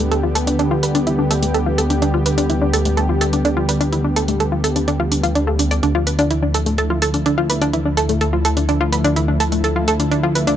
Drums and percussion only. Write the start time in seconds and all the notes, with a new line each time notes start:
0.12 closed hi-hat
0.35 closed hi-hat
0.47 closed hi-hat
0.59 closed hi-hat
0.83 closed hi-hat
0.95 closed hi-hat
1.07 closed hi-hat
1.31 closed hi-hat
1.43 closed hi-hat
1.54 closed hi-hat
1.78 closed hi-hat
1.90 closed hi-hat
2.02 closed hi-hat
2.26 closed hi-hat
2.38 closed hi-hat
2.50 closed hi-hat
2.73 closed hi-hat
2.85 closed hi-hat
2.97 closed hi-hat
3.21 closed hi-hat
3.33 closed hi-hat
3.45 closed hi-hat
3.69 closed hi-hat
3.81 closed hi-hat
3.93 closed hi-hat
4.16 closed hi-hat
4.28 closed hi-hat
4.40 closed hi-hat
4.64 closed hi-hat
4.76 closed hi-hat
4.88 closed hi-hat
5.12 closed hi-hat
5.24 closed hi-hat
5.35 closed hi-hat
5.59 closed hi-hat
5.71 closed hi-hat
5.83 closed hi-hat
6.07 closed hi-hat
6.19 closed hi-hat
6.31 closed hi-hat
6.54 closed hi-hat
6.66 closed hi-hat
6.78 closed hi-hat
7.02 closed hi-hat
7.14 closed hi-hat
7.26 closed hi-hat
7.50 closed hi-hat
7.62 closed hi-hat
7.73 closed hi-hat
7.97 closed hi-hat
8.09 closed hi-hat
8.21 closed hi-hat
8.45 closed hi-hat
8.57 closed hi-hat
8.69 closed hi-hat
8.93 closed hi-hat
9.04 closed hi-hat
9.16 closed hi-hat
9.40 closed hi-hat
9.52 closed hi-hat
9.64 closed hi-hat
9.88 closed hi-hat
10.00 closed hi-hat
10.12 closed hi-hat
10.35 closed hi-hat
10.47 closed hi-hat